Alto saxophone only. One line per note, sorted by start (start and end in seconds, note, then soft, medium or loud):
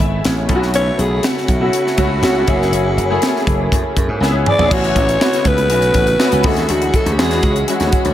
0.75 1.02 C#5 loud
1.00 1.26 G#4 loud
1.25 4.22 F#4 loud
4.48 4.74 D5 loud
4.73 5.49 C#5 loud
5.48 6.48 B4 loud
6.46 6.73 A4 medium
6.71 6.97 F#4 loud
6.96 7.14 A4 medium
7.13 7.22 G4 medium
7.20 7.69 G#4 medium